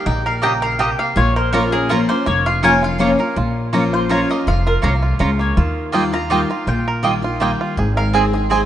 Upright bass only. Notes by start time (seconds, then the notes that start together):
0.06 A#1
1.16 A#1
2.27 F1
3.37 A#1
4.47 F1
4.83 C2
5.20 C#2
5.57 D#2
6.67 A#1
7.77 G#1